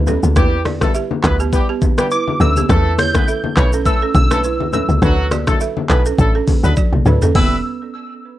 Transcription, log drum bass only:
0.00 0.17 D2 loud
0.23 0.38 D2 loud
0.36 0.82 E2 loud
1.24 1.60 D2 medium
2.40 2.63 D2 loud
2.69 3.16 E2 loud
3.57 4.03 B1 medium
4.15 4.61 B1 loud
4.60 4.83 C#2 medium
4.89 4.99 C#2 loud
5.02 5.48 D2 loud
5.90 6.13 B1 medium
6.19 6.42 A1 loud
6.64 6.74 D2 medium
6.93 7.03 B1 medium
7.06 7.19 D2 loud
7.35 7.62 E1 loud

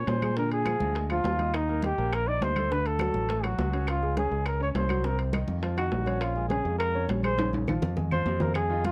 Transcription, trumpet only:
0.00 0.10 C#5 medium
0.09 0.37 C5 medium
0.38 0.51 A#4 medium
0.53 1.07 G#4 medium
1.12 1.57 F4 medium
1.55 1.84 D#4 medium
1.85 2.15 G4 medium
2.14 2.29 A#4 medium
2.28 2.44 D5 medium
2.43 2.73 C5 medium
2.72 2.88 B4 medium
2.87 3.46 A4 medium
3.44 3.88 F#4 medium
3.89 4.16 F4 medium
4.18 4.45 G#4 medium
4.47 4.60 A#4 medium
4.63 4.69 C#5 medium
4.77 5.08 C5 medium
5.06 5.20 A#4 medium
5.78 6.23 F#4 medium
6.22 6.49 F4 medium
6.50 6.77 G#4 medium
6.79 7.06 A#4 medium
7.24 7.51 C5 loud
8.12 8.44 C5 medium
8.42 8.55 A#4 medium
8.56 8.82 G#4 medium
8.86 8.92 F4 medium

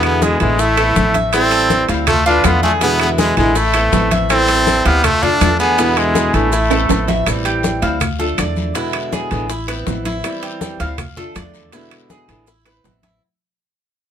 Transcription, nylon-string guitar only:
0.00 0.39 B2 medium
0.00 0.40 D3 medium
0.00 0.40 G#3 medium
0.00 0.40 B3 medium
0.00 0.39 E4 medium
0.40 0.58 D3 medium
0.40 0.59 G#3 medium
0.40 0.59 B3 medium
0.40 0.58 E4 medium
0.59 muted nylon-string guitar stroke medium
0.77 0.96 B3 medium
0.77 0.95 C4 medium
0.77 0.95 E4 medium
0.96 1.32 E3 medium
0.96 1.33 B3 medium
0.96 1.33 C4 medium
0.96 1.33 E4 medium
1.33 1.88 E3 medium
1.33 1.88 G3 medium
1.33 1.88 C4 medium
1.33 1.87 E4 medium
1.89 2.07 G3 medium
1.89 2.07 C4 medium
1.89 2.06 E4 medium
2.08 muted nylon-string guitar stroke medium
2.26 2.44 A3 medium
2.26 2.44 D4 medium
2.26 2.44 F4 medium
2.45 2.81 D3 medium
2.45 2.81 A3 medium
2.45 2.82 D4 medium
2.45 2.82 F4 medium
2.81 3.36 B2 medium
2.81 3.37 D3 medium
2.81 3.37 G#3 medium
2.81 3.36 B3 medium
2.81 3.36 E4 medium
3.37 3.56 D3 medium
3.37 3.55 G#3 medium
3.37 3.55 B3 medium
3.37 3.55 E4 medium
3.56 muted nylon-string guitar stroke medium
3.74 3.92 B3 medium
3.74 3.93 C4 medium
3.74 3.92 E4 medium
3.93 4.29 E3 medium
3.93 4.30 B3 medium
3.93 4.30 C4 medium
3.93 4.30 E4 medium
4.30 4.85 E3 medium
4.30 4.85 G3 medium
4.30 4.85 C4 medium
4.30 4.84 E4 medium
4.85 5.04 G3 medium
4.85 5.03 C4 medium
4.85 5.03 E4 medium
5.04 muted nylon-string guitar stroke medium
5.22 5.40 A3 medium
5.22 5.41 D4 medium
5.22 5.40 F4 medium
5.41 5.77 D3 medium
5.41 5.78 A3 medium
5.41 5.78 D4 medium
5.41 5.78 F4 medium
5.78 6.33 B2 medium
5.78 6.33 D3 medium
5.78 6.33 G#3 medium
5.78 6.33 B3 medium
5.78 6.32 E4 medium
6.33 6.52 D3 medium
6.33 6.52 G#3 medium
6.33 6.51 B3 medium
6.33 6.51 E4 medium
6.52 muted nylon-string guitar stroke medium
6.70 6.89 B3 medium
6.70 6.88 C4 medium
6.70 6.89 E4 medium
6.89 7.25 E3 medium
6.89 7.26 B3 medium
6.89 7.26 C4 medium
6.89 7.26 E4 medium
7.26 7.82 E3 medium
7.26 7.82 G3 medium
7.26 7.82 C4 medium
7.26 7.81 E4 medium
7.82 8.01 G3 medium
7.82 8.01 C4 medium
7.82 8.00 E4 medium
8.01 muted nylon-string guitar stroke medium
8.19 8.38 A3 medium
8.19 8.38 D4 medium
8.19 8.37 F4 medium
8.38 8.74 D3 medium
8.38 8.75 A3 medium
8.38 8.75 D4 medium
8.38 8.75 F4 medium
8.75 9.30 B2 medium
8.75 9.30 D3 medium
8.75 9.31 G#3 medium
8.75 9.30 B3 medium
8.75 9.30 E4 medium
9.31 9.49 D3 medium
9.31 9.49 G#3 medium
9.31 9.49 B3 medium
9.31 9.49 E4 medium
9.49 muted nylon-string guitar stroke medium
9.68 9.86 B3 medium
9.68 9.86 C4 medium
9.68 9.86 E4 medium
9.87 10.23 E3 medium
9.87 10.24 B3 medium
9.87 10.23 C4 medium
9.87 10.24 E4 medium
10.24 10.79 E3 medium
10.24 10.79 G3 medium
10.24 10.80 C4 medium
10.24 10.79 E4 medium
10.80 10.99 G3 medium
10.80 10.98 C4 medium
10.80 10.98 E4 medium
10.99 muted nylon-string guitar stroke medium
11.17 11.35 A3 medium
11.17 11.35 D4 medium
11.17 11.35 F4 medium
11.36 11.71 D3 medium
11.36 11.73 A3 medium
11.36 11.73 D4 medium
11.36 11.73 F4 medium
11.72 12.28 B2 medium
11.72 12.28 D3 medium
11.72 12.28 G#3 medium
11.72 12.28 B3 medium
11.72 12.27 E4 medium
12.28 12.47 D3 medium
12.28 12.47 G#3 medium
12.28 12.47 B3 medium
12.28 12.46 E4 medium
12.47 muted nylon-string guitar stroke medium
12.65 12.84 B3 medium
12.65 12.83 C4 medium
12.65 12.84 E4 medium
12.84 13.21 E3 medium
12.84 13.21 B3 medium
12.84 13.21 C4 medium
12.84 13.22 E4 medium

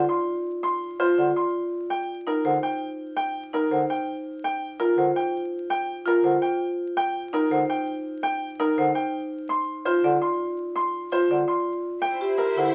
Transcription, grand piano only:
0.09 0.33 C6 medium
0.63 0.87 C6 medium
1.00 1.23 C5 medium
1.36 1.60 C6 medium
1.90 2.14 G5 medium
2.27 2.50 A#4 medium
2.63 2.86 G5 medium
3.17 3.40 G5 medium
3.54 3.77 A#4 medium
3.90 4.13 G5 medium
4.44 4.67 G5 medium
4.80 5.03 A#4 medium
5.16 5.39 G5 medium
5.70 5.94 G5 medium
6.07 6.30 A#4 medium
6.42 6.66 G5 medium
6.97 7.20 G5 medium
7.33 7.56 A#4 medium
7.70 7.93 G5 medium
8.23 8.47 G5 medium
8.60 8.83 A#4 medium
8.95 9.19 G5 medium
9.49 9.73 C6 medium
9.85 10.09 C5 medium
10.21 10.45 C6 medium
10.76 10.99 C6 medium
11.12 11.36 C5 medium
11.48 11.72 C6 medium
12.02 12.26 G5 medium
12.38 12.62 A#4 medium

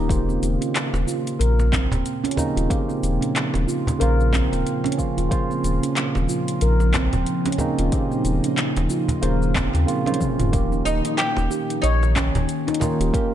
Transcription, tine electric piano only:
0.00 0.12 D#3 medium
0.00 0.09 A#3 medium
0.00 0.12 C#4 medium
0.00 0.12 G4 loud
0.08 2.34 C#3 medium
0.08 2.34 A#3 medium
0.08 2.36 F4 medium
0.08 2.35 C5 medium
2.37 2.66 C#3 medium
2.37 2.67 A#3 medium
2.37 2.67 C4 medium
2.37 2.67 D#4 loud
2.69 2.85 C#3 medium
2.69 2.85 A#3 medium
2.69 2.86 C4 medium
2.69 2.86 G4 medium
3.98 4.94 C#3 medium
3.98 4.95 A#3 medium
3.98 4.96 F4 loud
3.98 4.95 C5 medium
4.97 5.27 C#3 medium
4.97 5.28 A#3 medium
4.97 5.28 C4 medium
4.97 5.28 F4 medium
5.29 7.55 C#3 medium
5.29 7.56 A#3 medium
5.29 7.57 F4 medium
5.29 7.56 C5 medium
7.58 7.88 C#3 medium
7.58 7.89 A#3 medium
7.58 7.89 C4 medium
7.58 7.89 D#4 loud
7.91 8.07 C#3 medium
7.91 8.07 A#3 medium
7.91 8.08 C4 medium
7.91 8.08 G4 medium
9.21 9.84 C#3 medium
9.21 9.85 A#3 medium
9.21 9.85 F4 loud
9.21 9.85 C5 medium
9.86 10.01 C#3 medium
9.86 10.02 A#3 medium
9.86 10.02 C4 medium
9.86 10.02 F4 medium
10.05 10.49 C#3 medium
10.05 10.49 A#3 medium
10.05 10.50 F4 medium
10.05 10.50 C5 medium
10.51 12.77 D#3 medium
10.51 12.78 A#3 medium
10.51 12.78 C#4 medium
10.51 12.79 G4 medium
12.80 13.10 D#3 loud
12.80 13.10 A#3 medium
12.80 13.11 C#4 medium
12.80 13.11 F4 loud
13.12 13.28 D#3 medium
13.12 13.29 A#3 medium
13.12 13.29 C#4 medium
13.12 13.29 A#4 medium

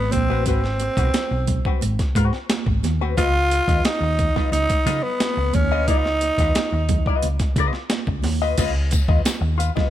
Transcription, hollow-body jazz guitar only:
0.30 0.45 C4 medium
0.30 0.45 F#4 medium
0.30 0.45 B4 medium
0.47 0.61 C4 medium
0.47 0.62 F#4 medium
0.47 0.62 B4 medium
0.64 muted hollow-body jazz guitar stroke soft
0.82 muted hollow-body jazz guitar stroke soft
0.97 1.10 C4 medium
0.97 1.09 F#4 medium
0.97 1.09 B4 medium
1.32 muted hollow-body jazz guitar stroke soft
1.66 1.81 C4 medium
1.66 1.81 F#4 medium
1.66 1.80 B4 medium
1.99 muted hollow-body jazz guitar stroke soft
2.16 2.36 C4 medium
2.16 2.33 F#4 medium
2.16 2.33 B4 loud
2.34 muted hollow-body jazz guitar stroke soft
2.50 muted hollow-body jazz guitar stroke soft
2.67 muted hollow-body jazz guitar stroke soft
3.01 3.16 C4 medium
3.01 3.16 F#4 medium
3.01 3.15 B4 medium
3.17 3.32 F4 medium
3.17 3.32 B4 medium
3.17 3.32 D#5 medium
3.35 muted hollow-body jazz guitar stroke medium
3.52 muted hollow-body jazz guitar stroke soft
3.68 3.80 F4 soft
3.68 3.80 B4 medium
3.68 3.80 D#5 medium
3.87 muted hollow-body jazz guitar stroke soft
4.04 muted hollow-body jazz guitar stroke medium
4.36 4.51 F4 medium
4.36 4.51 B4 medium
4.36 4.51 D#5 medium
4.70 muted hollow-body jazz guitar stroke soft
4.87 5.01 F4 medium
4.87 5.01 B4 medium
4.87 5.02 D#5 medium
5.04 muted hollow-body jazz guitar stroke soft
5.21 muted hollow-body jazz guitar stroke soft
5.38 muted hollow-body jazz guitar stroke soft
5.72 5.87 F4 medium
5.72 5.86 B4 medium
5.72 5.86 D#5 medium
5.88 6.08 F4 medium
5.88 6.06 B4 loud
5.88 6.05 D#5 medium
6.06 muted hollow-body jazz guitar stroke soft
6.23 muted hollow-body jazz guitar stroke soft
6.40 6.52 F4 medium
6.40 6.51 B4 medium
6.40 6.51 D#5 medium
6.57 muted hollow-body jazz guitar stroke soft
6.74 muted hollow-body jazz guitar stroke soft
7.07 7.28 F4 medium
7.07 7.27 B4 medium
7.07 7.27 D#5 medium
7.42 muted hollow-body jazz guitar stroke soft
7.58 7.77 F4 medium
7.58 7.74 B4 loud
7.58 7.74 D#5 loud
7.75 muted hollow-body jazz guitar stroke soft
7.92 muted hollow-body jazz guitar stroke soft
8.08 muted hollow-body jazz guitar stroke soft
8.42 8.57 F4 medium
8.42 8.56 B4 medium
8.42 8.56 D#5 medium
8.58 8.73 F4 medium
8.58 8.73 B4 medium
8.58 8.73 D#5 medium
8.92 muted hollow-body jazz guitar stroke soft
9.09 9.21 F4 medium
9.09 9.21 B4 medium
9.09 9.20 D#5 medium
9.42 muted hollow-body jazz guitar stroke soft
9.58 9.70 F4 medium
9.58 9.70 B4 medium
9.58 9.71 F5 medium
9.75 9.88 F4 soft
9.75 9.88 B4 medium
9.75 9.87 D#5 medium

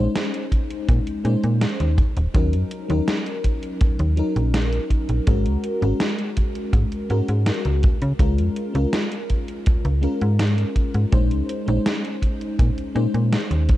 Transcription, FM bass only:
0.89 1.00 A#2 medium
1.25 1.36 A#2 medium
1.44 1.66 A#2 medium
1.80 2.02 D#2 medium
2.17 2.28 D#1 medium
2.35 2.55 D#2 loud
2.54 2.64 F#2 medium
2.90 3.01 D#2 loud
4.00 4.22 D#2 medium
4.36 4.79 A#1 medium
5.09 5.20 A#1 medium
5.28 5.47 G#1 loud
5.46 5.57 C#2 medium
5.82 5.93 G#1 loud
6.73 6.85 G#2 medium
7.10 7.22 G#2 medium
7.29 7.51 G#2 medium
7.65 7.88 C#2 medium
8.02 8.13 C#3 medium
8.19 8.40 C#2 medium
8.39 8.50 F2 medium
8.75 8.86 C#2 loud
9.85 10.07 C#2 medium
10.22 10.65 G#2 medium
10.95 11.06 G#2 medium
11.13 11.33 A#1 loud
11.32 11.42 C#2 medium
11.68 11.79 A#1 loud
12.59 12.70 A#2 medium
12.95 13.07 A#2 medium
13.14 13.36 A#2 medium
13.51 13.73 D#2 medium

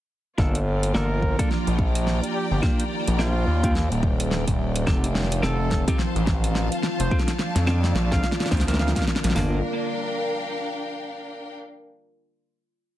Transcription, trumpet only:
0.95 1.39 A#4 medium
2.35 2.45 G4 medium
2.51 2.59 G4 medium
3.20 3.75 F4 loud
5.43 5.88 A4 medium
6.99 7.17 C5 medium
8.12 8.30 F5 medium
8.79 8.90 F5 medium
8.96 9.04 F5 medium

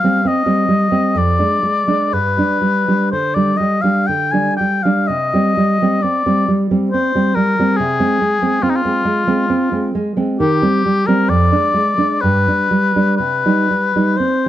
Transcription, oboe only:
0.00 0.29 F5 medium
0.28 1.19 D#5 medium
1.17 2.15 D5 medium
2.13 3.11 B4 medium
3.12 3.36 C5 soft
3.35 3.58 D5 soft
3.57 3.83 D#5 soft
3.82 4.08 F5 soft
4.06 4.33 G5 medium
4.32 4.56 G#5 soft
4.56 4.84 G5 soft
4.83 5.09 F5 soft
5.07 6.03 D#5 medium
6.02 6.64 D5 soft
6.91 7.36 C5 soft
7.35 7.78 A#4 soft
7.76 8.64 G#4 medium
8.62 8.71 F4 soft
8.70 8.77 D#4 soft
8.76 9.94 F4 medium
10.39 11.08 G4 medium
11.07 11.31 A#4 medium
11.29 12.23 D5 medium
12.21 13.16 B4 medium
13.17 14.18 B4 medium
14.17 14.49 C5 soft

